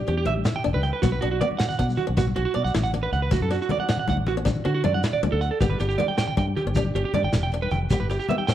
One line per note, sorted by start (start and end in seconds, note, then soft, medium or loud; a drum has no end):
0.07 0.24 E2 medium
0.07 0.21 C#4 medium
0.07 0.15 G4 medium
0.07 closed hi-hat soft
0.17 0.24 G4 medium
0.25 0.43 A1 medium
0.25 0.39 D4 medium
0.25 0.33 E5 medium
0.25 closed hi-hat soft
0.25 muted conga medium
0.25 low conga medium
0.36 high conga medium
0.45 0.58 E4 medium
0.45 snare medium
0.45 closed hi-hat medium
0.45 shekere loud
0.54 0.62 G5 medium
0.54 low conga medium
0.64 0.73 E1 medium
0.64 0.77 D4 medium
0.64 closed hi-hat medium
0.73 0.91 C#2 loud
0.73 0.81 B4 medium
0.73 high conga medium
0.83 0.90 G5 medium
0.83 closed hi-hat soft
0.83 low conga medium
0.93 1.00 B4 medium
1.02 1.19 B1 loud
1.02 1.16 B3 medium
1.02 1.09 F#4 medium
1.02 kick medium
1.02 closed hi-hat medium
1.02 muted conga medium
1.02 shekere loud
1.12 1.19 B4 medium
1.12 high conga medium
1.21 1.39 B1 medium
1.21 1.35 D4 medium
1.21 1.28 F#4 medium
1.21 closed hi-hat medium
1.21 low conga soft
1.31 1.38 F#4 medium
1.41 1.54 B3 medium
1.41 1.48 D5 medium
1.41 closed hi-hat soft
1.41 muted conga medium
1.41 low conga medium
1.51 high conga medium
1.51 low conga soft
1.59 1.73 C#4 medium
1.59 1.66 F#5 medium
1.59 snare medium
1.59 closed hi-hat medium
1.59 shekere medium
1.69 1.76 F#5 medium
1.69 low conga medium
1.69 shekere soft
1.79 1.96 B2 medium
1.79 1.92 D4 medium
1.79 1.86 F#5 medium
1.79 kick medium
1.79 closed hi-hat soft
1.79 low conga soft
1.79 shekere soft
1.89 high conga medium
1.89 shekere soft
1.97 2.05 F#4 medium
1.97 closed hi-hat soft
1.97 low conga medium
2.07 2.33 B1 medium
2.07 2.14 C#4 medium
2.17 2.30 B3 medium
2.17 2.25 F#4 medium
2.17 kick medium
2.17 closed hi-hat medium
2.17 muted conga medium
2.17 low conga soft
2.17 shekere medium
2.27 high conga medium
2.27 low conga medium
2.36 2.45 B1 medium
2.36 2.49 C#4 medium
2.36 2.43 F#4 medium
2.36 closed hi-hat soft
2.36 high conga soft
2.45 2.52 F#4 medium
2.54 2.64 B2 medium
2.54 2.68 D4 medium
2.54 2.62 D5 medium
2.54 closed hi-hat soft
2.54 high conga medium
2.65 2.73 B1 medium
2.65 2.72 F#5 medium
2.65 shekere soft
2.74 3.08 A1 medium
2.74 2.88 E4 medium
2.74 snare medium
2.74 closed hi-hat medium
2.74 high conga medium
2.74 shekere medium
2.84 2.91 F#5 medium
2.84 shekere soft
2.94 3.07 D4 medium
2.94 closed hi-hat soft
2.94 low conga medium
3.03 3.10 B4 medium
3.12 3.29 C#2 medium
3.12 3.20 F#5 medium
3.12 closed hi-hat soft
3.12 low conga medium
3.22 3.29 B4 medium
3.31 3.40 D2 medium
3.31 3.44 A3 medium
3.31 3.39 F#4 medium
3.31 kick medium
3.31 closed hi-hat medium
3.31 muted conga medium
3.31 shekere medium
3.40 3.58 F#2 medium
3.40 3.49 A4 medium
3.40 high conga medium
3.40 low conga medium
3.50 3.64 D4 medium
3.50 3.58 F#4 medium
3.50 closed hi-hat soft
3.50 shekere soft
3.61 3.69 F#4 medium
3.61 shekere soft
3.69 3.83 B3 medium
3.69 3.78 D5 medium
3.69 closed hi-hat soft
3.69 muted conga medium
3.69 low conga medium
3.78 3.87 F#5 medium
3.78 high conga medium
3.88 4.02 C#4 medium
3.88 3.97 F#5 medium
3.88 snare medium
3.88 closed hi-hat medium
3.88 low conga soft
3.88 shekere medium
3.97 4.06 F#5 medium
3.97 low conga medium
4.08 4.16 D2 medium
4.08 4.16 F#5 medium
4.08 kick medium
4.08 closed hi-hat medium
4.08 muted conga medium
4.08 low conga soft
4.17 4.59 A1 medium
4.17 high conga medium
4.17 low conga soft
4.27 4.35 F#4 medium
4.27 closed hi-hat soft
4.27 low conga medium
4.37 4.44 C#4 medium
4.45 4.59 D4 medium
4.45 muted clean electric guitar stroke medium
4.45 kick medium
4.45 closed hi-hat medium
4.45 muted conga medium
4.45 shekere medium
4.56 high conga medium
4.56 low conga medium
4.65 4.82 D3 medium
4.65 4.78 C#4 medium
4.65 4.73 F#4 medium
4.65 closed hi-hat soft
4.75 4.82 F#4 medium
4.84 5.01 F#2 medium
4.84 4.97 D4 medium
4.84 4.92 D5 medium
4.84 closed hi-hat soft
4.84 muted conga medium
4.84 low conga medium
4.94 5.01 F#5 medium
4.94 high conga medium
5.04 5.17 E4 medium
5.04 snare medium
5.04 closed hi-hat medium
5.04 shekere medium
5.13 5.20 D5 medium
5.13 low conga medium
5.23 5.31 D2 medium
5.23 muted steel-string acoustic guitar stroke medium
5.23 closed hi-hat soft
5.23 muted conga medium
5.23 low conga soft
5.32 5.49 D2 medium
5.32 5.39 A4 medium
5.32 high conga medium
5.41 5.49 F#5 medium
5.41 closed hi-hat soft
5.51 5.58 A4 medium
5.61 5.78 G1 medium
5.61 5.75 B3 medium
5.61 5.68 G4 medium
5.61 kick medium
5.61 closed hi-hat medium
5.61 muted conga medium
5.61 shekere medium
5.70 5.77 B4 medium
5.70 high conga medium
5.70 low conga medium
5.79 5.97 G1 medium
5.79 5.94 D4 medium
5.79 5.87 G4 medium
5.79 closed hi-hat soft
5.79 shekere soft
5.89 5.96 G4 medium
5.89 shekere soft
5.98 6.13 B3 medium
5.98 6.06 D5 medium
5.98 closed hi-hat soft
5.98 muted conga medium
5.98 low conga medium
6.08 6.16 G5 medium
6.08 high conga medium
6.17 6.32 C#4 medium
6.17 6.25 G5 medium
6.17 snare medium
6.17 closed hi-hat medium
6.17 low conga soft
6.17 shekere medium
6.28 6.35 G5 medium
6.28 low conga medium
6.37 6.54 G2 medium
6.37 6.51 D4 medium
6.37 6.45 G5 medium
6.37 kick medium
6.37 closed hi-hat soft
6.37 muted conga medium
6.37 low conga soft
6.47 high conga medium
6.47 low conga soft
6.56 6.64 G4 medium
6.56 closed hi-hat soft
6.56 low conga medium
6.66 6.92 G1 medium
6.66 6.73 C#4 medium
6.75 6.90 D4 medium
6.75 6.83 G4 medium
6.75 kick medium
6.75 closed hi-hat medium
6.75 muted conga medium
6.75 shekere medium
6.85 high conga medium
6.85 low conga medium
6.95 7.03 G1 medium
6.95 7.09 C#4 medium
6.95 7.02 G4 medium
6.95 closed hi-hat soft
7.05 7.12 G4 medium
7.13 7.22 G2 medium
7.13 7.28 D4 medium
7.13 7.21 D5 medium
7.13 closed hi-hat medium
7.13 muted conga medium
7.13 low conga medium
7.23 7.32 G1 medium
7.23 7.31 G5 medium
7.23 high conga medium
7.33 7.67 E1 medium
7.33 7.47 E4 medium
7.33 snare medium
7.33 closed hi-hat medium
7.33 shekere medium
7.43 7.50 G5 medium
7.43 low conga medium
7.52 7.67 D4 medium
7.52 closed hi-hat soft
7.52 low conga soft
7.62 7.69 B4 medium
7.62 high conga medium
7.71 7.88 F1 medium
7.71 7.79 G5 medium
7.71 closed hi-hat medium
7.71 low conga medium
7.90 7.99 E1 medium
7.90 8.05 B3 medium
7.90 7.98 G4 medium
7.90 kick medium
7.90 closed hi-hat medium
7.90 muted conga medium
7.90 shekere medium
8.00 8.18 G1 medium
8.00 8.07 B4 medium
8.00 high conga medium
8.00 low conga medium
8.09 8.24 E4 medium
8.09 8.17 G4 medium
8.09 closed hi-hat medium
8.09 shekere soft
8.20 8.27 G4 medium
8.20 shekere soft
8.29 8.43 B3 medium
8.29 8.36 E5 medium
8.29 closed hi-hat soft
8.29 muted conga medium
8.29 low conga medium
8.38 8.46 G5 medium
8.38 high conga medium
8.47 8.54 C#4 medium
8.47 8.54 G5 medium
8.47 snare medium
8.47 closed hi-hat medium
8.47 low conga soft
8.47 shekere loud